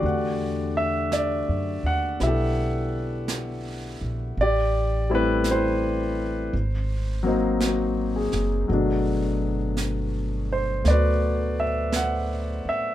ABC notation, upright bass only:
X:1
M:4/4
L:1/8
Q:"Swing" 1/4=56
K:G
V:1 name="Upright bass" clef=bass
E,,2- (3E,, F,, _E,, B,,,3 _B,,, | A,,,4 _A,,,3 _G,,, | G,,,4 D,,3 z |]